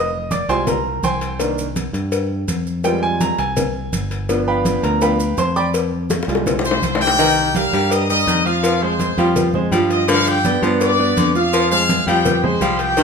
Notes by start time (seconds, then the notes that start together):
Already playing: F1 D#5 D#6
0.13 high conga
0.31 D5 D6, cowbell, high conga, maracas
0.49 C2 G3 G#3 F4 C5 G5 G#5 C6, cowbell, high conga, maracas
0.67 A#4 A#5, cowbell, high conga, low conga, maracas
0.85 high conga
1.03 C2 C5 G5 G#5 C6, cowbell, high conga, maracas
1.21 cowbell, high conga, maracas
1.39 D#3 A#3 D4, cowbell, high conga, maracas
1.58 high conga, maracas
1.76 cowbell, high conga, maracas
1.93 G2, cowbell, high conga, maracas
2.12 cowbell, high conga, maracas
2.31 high conga
2.48 F2, cowbell, high conga, maracas
2.67 high conga, maracas
2.84 G3 G#3 F4 G5, cowbell, high conga, maracas
3.03 G#5, high conga
3.21 A#5, cowbell, high conga, maracas
3.38 C2 G#5, cowbell, high conga, maracas
3.57 cowbell, high conga, low conga, maracas
3.75 high conga
3.92 G1, cowbell, high conga, maracas
4.11 cowbell, high conga, maracas
4.29 F3 B3 D4, cowbell, high conga, maracas
4.47 B4 F5 G5 B5, high conga
4.65 cowbell, high conga, maracas
4.83 D2 A#4 A#5, cowbell, high conga, maracas
5.01 F3 B3 D4 B4 F5 G5 B5, cowbell, high conga, maracas
5.20 high conga, maracas
5.38 F2 C5 C6, cowbell, high conga, maracas
5.56 D5 G5 B5 D6, high conga, maracas
5.74 cowbell, high conga, maracas
5.92 high conga
6.10 cowbell, high bongo, high conga, maracas
6.23 high bongo
6.28 C2 G3 G#3 F4, cowbell, high conga, maracas
6.35 high bongo
6.46 cowbell, low bongo, high conga, low conga, maracas
6.59 low bongo
6.64 C5 C6, high conga, maracas
6.71 low bongo
6.82 C2, cowbell, high conga, maracas
6.95 low bongo
7.00 G4 G5, cowbell, high conga, maracas
7.07 low bongo
7.19 D#3 D#4 D#5, cowbell, high conga, maracas
7.37 high conga
7.55 G3 G4 A#4 F5, cowbell, high conga, maracas
7.73 G2 G3 G4 A#4, cowbell, high conga, maracas
7.91 D#5 D#6, cowbell, high conga, maracas
8.09 G3 G4 A#4 D#5 D#6, high conga, maracas
8.27 F2 D#3, cowbell, high conga, maracas
8.45 F3 F4 F5, high conga, maracas
8.63 F3, cowbell, high conga, maracas
8.81 G#3 G#4 C5 C6, high conga
8.99 cowbell, high conga, maracas
9.17 F2 F3 G3 F4 F5, cowbell, high conga, maracas
9.36 cowbell, high conga, low conga, maracas
9.54 G#3 G#4 C5, high conga, low conga
9.71 G2 F3 G3 F4 F5, cowbell, high conga, maracas
9.90 D#5 D#6, cowbell, high conga, maracas
10.08 D3 F3 F4 F5, cowbell, high conga, maracas
10.26 G4 G5, high conga, maracas
10.45 B3 B4 D5, cowbell, high conga, maracas
10.62 G2 F3 B3 B4 D5, cowbell, high conga, maracas
10.81 D5 D6, cowbell, high conga, maracas
10.99 B3 B4 D5, high conga
11.17 F2 D3, cowbell, high conga, maracas
11.35 F3 F4 F5, high conga, maracas
11.53 F3, cowbell, high conga, maracas
11.71 G#3 G#4 C5 F5, high conga, maracas
11.89 cowbell, high conga, maracas
12.07 F2 F3 G3 F4 G4 F5 G5, cowbell, maracas
12.25 cowbell, high conga, low conga, maracas
12.43 G#3 G#4 C5 C6, high conga, low conga
12.61 C2 F3 G3 F4 F5, cowbell, high conga, maracas
12.79 G4 G5, cowbell, high conga, maracas
12.97 D#3 D#4 D#5, cowbell, high conga, maracas